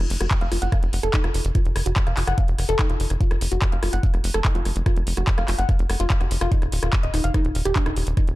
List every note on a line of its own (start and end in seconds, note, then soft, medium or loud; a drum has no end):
0.10 0.17 F1 loud
0.10 open hi-hat loud
0.21 0.28 F1 medium
0.21 0.30 F#4 medium
0.21 cross-stick medium
0.21 closed hi-hat medium
0.31 kick loud
0.31 clap loud
0.31 closed hi-hat medium
0.41 0.48 F1 medium
0.41 0.47 F5 loud
0.41 closed hi-hat soft
0.52 0.59 F1 loud
0.52 0.58 F4 medium
0.52 cross-stick soft
0.52 open hi-hat loud
0.62 0.69 F#1 medium
0.62 0.68 F#5 loud
0.62 closed hi-hat medium
0.72 0.78 F5 medium
0.72 kick loud
0.72 cross-stick medium
0.72 closed hi-hat medium
0.83 0.90 F1 medium
0.83 closed hi-hat soft
0.93 1.00 F1 loud
0.93 open hi-hat loud
1.03 1.10 F1 medium
1.03 1.12 A4 loud
1.03 cross-stick soft
1.03 closed hi-hat medium
1.14 1.20 D#4 medium
1.14 kick loud
1.14 clap loud
1.14 closed hi-hat medium
1.24 1.31 F1 medium
1.24 1.30 F4 medium
1.24 cross-stick medium
1.24 closed hi-hat soft
1.34 1.42 F1 loud
1.34 open hi-hat medium
1.45 1.52 F1 loud
1.45 closed hi-hat medium
1.55 1.61 F4 medium
1.55 kick loud
1.55 cross-stick soft
1.55 closed hi-hat medium
1.65 1.73 F1 medium
1.65 closed hi-hat soft
1.76 1.83 F1 loud
1.76 cross-stick medium
1.76 open hi-hat loud
1.86 1.93 F1 medium
1.86 1.95 F#4 medium
1.86 closed hi-hat medium
1.96 kick loud
1.96 clap loud
1.96 closed hi-hat medium
2.07 2.14 F1 medium
2.07 2.13 F5 loud
2.07 cross-stick soft
2.07 closed hi-hat soft
2.17 2.24 F1 loud
2.17 2.23 F4 medium
2.17 clap medium
2.17 open hi-hat loud
2.27 2.35 F#1 medium
2.27 2.34 F#5 loud
2.27 cross-stick medium
2.27 closed hi-hat medium
2.38 2.44 F5 medium
2.38 kick loud
2.38 closed hi-hat medium
2.48 2.55 F1 medium
2.48 closed hi-hat soft
2.58 2.66 F1 loud
2.58 cross-stick soft
2.58 open hi-hat loud
2.69 2.76 F1 medium
2.69 2.78 A4 loud
2.69 closed hi-hat medium
2.79 2.85 D#4 medium
2.79 kick loud
2.79 cross-stick medium
2.79 clap loud
2.79 closed hi-hat medium
2.90 2.97 F1 medium
2.90 2.96 F4 medium
2.90 closed hi-hat soft
3.00 3.07 F1 loud
3.00 open hi-hat loud
3.10 3.17 F1 medium
3.10 cross-stick soft
3.10 closed hi-hat medium
3.21 3.27 F4 medium
3.21 kick loud
3.21 closed hi-hat medium
3.31 3.38 F1 medium
3.31 cross-stick medium
3.31 closed hi-hat soft
3.41 3.48 F1 loud
3.41 open hi-hat loud
3.52 3.59 F1 medium
3.52 3.61 F#4 medium
3.52 closed hi-hat medium
3.62 kick loud
3.62 cross-stick soft
3.62 clap loud
3.62 closed hi-hat medium
3.72 3.79 F1 medium
3.72 3.78 F5 loud
3.72 closed hi-hat soft
3.83 3.90 F1 loud
3.83 3.89 F4 medium
3.83 cross-stick medium
3.83 open hi-hat loud
3.93 4.00 F#1 medium
3.93 3.99 F#5 loud
3.93 closed hi-hat medium
4.03 4.09 F5 medium
4.03 kick loud
4.03 closed hi-hat medium
4.14 4.21 F1 medium
4.14 cross-stick soft
4.14 closed hi-hat soft
4.24 4.31 F1 loud
4.24 open hi-hat loud
4.34 4.42 F1 medium
4.34 4.44 A4 loud
4.34 cross-stick medium
4.34 closed hi-hat medium
4.45 4.51 D#4 medium
4.45 kick loud
4.45 clap loud
4.45 closed hi-hat medium
4.55 4.62 F1 medium
4.55 4.61 F4 medium
4.55 closed hi-hat soft
4.65 4.73 F1 loud
4.65 cross-stick soft
4.65 open hi-hat medium
4.76 4.83 F1 medium
4.76 closed hi-hat medium
4.86 4.92 F4 medium
4.86 kick loud
4.86 cross-stick medium
4.86 closed hi-hat medium
4.96 5.04 F1 medium
4.96 closed hi-hat soft
5.07 5.14 F1 loud
5.07 open hi-hat loud
5.17 5.24 F1 medium
5.17 5.26 F#4 medium
5.17 cross-stick soft
5.17 closed hi-hat medium
5.27 kick loud
5.27 clap loud
5.27 closed hi-hat medium
5.38 5.45 F1 medium
5.38 5.44 F5 loud
5.38 cross-stick medium
5.38 closed hi-hat soft
5.48 5.55 F1 loud
5.48 5.54 F4 medium
5.48 clap medium
5.48 open hi-hat loud
5.59 5.66 F#1 medium
5.59 5.65 F#5 loud
5.59 closed hi-hat medium
5.69 5.75 F5 medium
5.69 kick loud
5.69 cross-stick soft
5.69 closed hi-hat soft
5.79 5.86 F1 medium
5.79 closed hi-hat soft
5.90 5.97 F1 loud
5.90 cross-stick medium
5.90 open hi-hat loud
6.00 6.07 F1 medium
6.00 6.04 F4 loud
6.00 closed hi-hat soft
6.10 6.16 F5 medium
6.10 kick loud
6.10 clap loud
6.10 closed hi-hat medium
6.21 6.28 F1 medium
6.21 6.27 F#4 medium
6.21 cross-stick soft
6.21 closed hi-hat soft
6.31 6.38 F1 loud
6.31 open hi-hat loud
6.41 6.48 F1 medium
6.41 6.50 F4 loud
6.41 cross-stick medium
6.41 closed hi-hat medium
6.52 6.58 D#4 medium
6.52 kick loud
6.52 closed hi-hat medium
6.62 6.69 D#1 medium
6.62 cross-stick soft
6.62 closed hi-hat soft
6.72 6.79 D#1 loud
6.72 open hi-hat loud
6.83 6.90 D#1 medium
6.83 6.92 F4 medium
6.83 cross-stick medium
6.83 closed hi-hat soft
6.93 kick loud
6.93 clap loud
6.93 closed hi-hat soft
7.03 7.10 D#1 medium
7.03 7.09 D#5 loud
7.03 closed hi-hat soft
7.14 7.21 D#1 loud
7.14 7.20 D#4 medium
7.14 cross-stick soft
7.14 open hi-hat medium
7.24 7.31 F1 medium
7.24 7.30 F5 loud
7.24 closed hi-hat medium
7.34 7.38 D#4 loud
7.34 kick loud
7.34 cross-stick medium
7.34 closed hi-hat medium
7.45 7.52 D#1 medium
7.45 closed hi-hat soft
7.55 7.62 D#1 loud
7.55 open hi-hat loud
7.65 7.73 D#1 medium
7.65 7.75 G4 loud
7.65 cross-stick soft
7.65 closed hi-hat medium
7.76 7.82 D4 medium
7.76 kick loud
7.76 clap loud
7.76 closed hi-hat soft
7.86 7.93 D#1 medium
7.86 7.92 D#4 medium
7.86 cross-stick medium
7.86 closed hi-hat soft
7.96 8.04 D#1 loud
7.96 open hi-hat medium
8.07 8.14 D#1 medium
8.07 closed hi-hat medium
8.17 8.23 D#4 medium
8.17 kick loud
8.17 cross-stick soft
8.17 closed hi-hat medium
8.27 8.35 D#1 medium
8.27 closed hi-hat soft